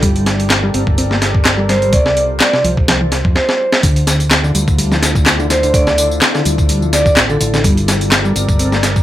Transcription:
Already playing: G4
0.03 G1 G3 A4 A#4 D5, kick, closed hi-hat
0.16 closed hi-hat
0.26 snare, closed hi-hat
0.40 closed hi-hat
0.50 snare, clap, closed hi-hat
0.63 G3
0.74 G1 C4, closed hi-hat
0.87 kick
0.98 C4, closed hi-hat
1.11 A#3, snare
1.22 snare, closed hi-hat
1.35 kick
1.45 snare, clap, closed hi-hat
1.58 G3
1.69 G3 C5, snare, closed hi-hat
1.82 G3 C5, closed hi-hat
1.93 C2 C3 F4 C5 D5, kick, closed hi-hat
2.06 D5, snare
2.17 closed hi-hat
2.40 D5, snare, clap, closed hi-hat
2.54 C3, snare
2.64 C2 F3, closed hi-hat
2.77 kick
2.88 F3, snare, closed hi-hat
3.01 E3
3.12 snare, closed hi-hat
3.25 F2, kick
3.36 C5, snare
3.49 snare
3.73 snare
3.83 D2 D3 D4 E4 F4 A4, kick, closed hi-hat, tambourine
3.96 closed hi-hat, tambourine
4.07 snare, closed hi-hat, tambourine
4.20 closed hi-hat, tambourine
4.31 snare, clap, closed hi-hat, tambourine
4.44 D3, tambourine
4.55 D2 G3, closed hi-hat, tambourine
4.68 kick, tambourine
4.79 G3, closed hi-hat, tambourine
4.92 F3, snare, tambourine
5.03 snare, closed hi-hat, tambourine
5.15 kick, tambourine
5.26 snare, clap, closed hi-hat, tambourine
5.39 D3, tambourine
5.50 D3 C5, snare, closed hi-hat, tambourine
5.63 D3 C5, closed hi-hat, tambourine
5.74 D3 D5, kick, closed hi-hat, tambourine
5.87 D5, snare, tambourine
5.98 closed hi-hat, tambourine
6.11 tambourine
6.22 snare, clap, closed hi-hat, tambourine
6.35 D3, snare, tambourine
6.45 D2 G3, closed hi-hat, tambourine
6.58 kick, tambourine
6.69 G3, closed hi-hat, tambourine
6.82 F3, tambourine
6.93 D5, snare, closed hi-hat, tambourine
7.06 D2, kick, tambourine
7.17 A1, snare, clap, closed hi-hat, tambourine
7.29 D3 A4, tambourine
7.40 A1 D3, closed hi-hat, tambourine
7.54 D3, snare, tambourine
7.64 G1 G3 G4 A4 A#4 D5, kick, closed hi-hat, tambourine
7.77 closed hi-hat, tambourine
7.88 snare, closed hi-hat, tambourine
8.01 closed hi-hat, tambourine
8.12 snare, clap, closed hi-hat, tambourine
8.25 G3, tambourine
8.36 G1 C4, closed hi-hat, tambourine
8.49 kick, tambourine
8.59 C4, closed hi-hat, tambourine
8.72 A#3, snare, tambourine
8.83 snare, closed hi-hat, tambourine
8.96 kick, tambourine

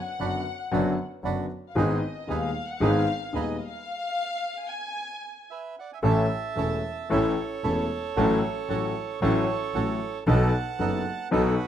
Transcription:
Already playing: F#5
0.20 F#1 F#2 D3 F#3 B3 D4 F#4 B4
0.72 F#1 F#2 D3 F#3 B3 D4 F#4 B4
1.23 F#1 F#2 D3 F#3 B3 D4 F#4 B4
1.70 F5
1.75 G#1 G#2 D#3 G#3 B3 D#4 G#4 B4
1.79 D#5
2.27 D#1 D#2 D#3 G#3 B3 D#4 G#4 B4 F5
2.68 F#5
2.80 G#1 G#2 D#3 G#3 B3 D#4 G#4 B4 F5
3.33 D#1 D#2 D#3 G#3 B3 D#4 G#4 B4 D#5
3.62 F5
4.68 G#5
5.50 B4 E5
5.79 D5 F#5
5.93 E5 G#5
6.03 A1 A2 E3 A3 C#4 E4 A4 A5
6.08 E5
6.55 E1 E2 E3 A3 C#4 E4 A4
7.09 A1 A2 E3 A3 C#4 E4 A4
7.14 A4 C#5
7.63 E1 E2 E3 A3 C#4 E4 A4
8.16 A1 A2 F#3 A3 C#4 F#4 A4
8.69 A1 A2 F#3 A3 C#4 F#4 A4
9.21 A1 A2 F#3 A3 C#4 F#4 A4 C#5
9.74 A1 A2 F#3 A3 C#4 F#4 A4
10.26 B1 B2 F#3 B3 D#4 A4 F#5 A5
10.79 F#1 F#2 F#3 B3 D#4 A4
11.31 B1 B2 F#3 B3 D#4 F#4 A4 B4

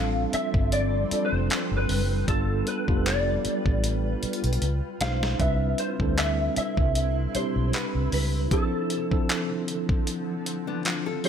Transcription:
Already playing: A1 F3 G3 C4 D4 F4 A4 F5
0.33 E5, muted fingered electric bass stroke, closed hi-hat
0.54 G1, kick
0.72 D5, closed hi-hat
1.11 G3 C4 D4 F4 A4, muted fingered electric bass stroke, closed hi-hat
1.25 C5
1.32 F1
1.50 clap, closed hi-hat
1.71 G1
1.77 B4
1.89 F#1, open hi-hat
2.28 G1 G3 B3 D4 F4 A4 B4, kick, closed hi-hat
2.67 B4, closed hi-hat
2.88 F1 G3 B3 D4 F4 G4, kick
2.96 A4
3.06 D5, clap, closed hi-hat
3.45 muted fingered electric bass stroke, closed hi-hat
3.66 A1, kick
3.84 closed hi-hat
4.23 muted fingered electric bass stroke, closed hi-hat
4.33 closed hi-hat
4.44 B1, closed hi-hat
4.53 closed hi-hat
4.62 C#2, closed hi-hat
5.01 B1 G#3 C#4 D#4 F4 C5 F5, snare, closed hi-hat
5.23 snare
5.40 C2 C3 G3 C4 D4 E4 B4 E5, kick, closed hi-hat
5.78 C5, closed hi-hat
6.00 D2 G3 C4 D4 E4 A4, kick
6.18 E5, clap, closed hi-hat
6.56 E5, muted fingered electric bass stroke, closed hi-hat
6.77 C2, kick
6.95 closed hi-hat
7.34 G3 C4 D4 E4 G4 C5, muted fingered electric bass stroke, closed hi-hat
7.56 B1
7.73 B4, clap, closed hi-hat
7.95 C2
8.12 C#2 B4, open hi-hat
8.51 D3 F3 C4 D4 E4 A4, kick, closed hi-hat
8.90 closed hi-hat
9.11 F3 C4 D4 E4 A4, kick
9.29 clap, closed hi-hat
9.68 closed hi-hat
9.89 kick
10.07 closed hi-hat
10.46 closed hi-hat
10.67 B3 D4
10.85 D4 F4, clap, closed hi-hat
11.06 F4 A4
11.24 F3 C4 D4 E4 C5, open hi-hat

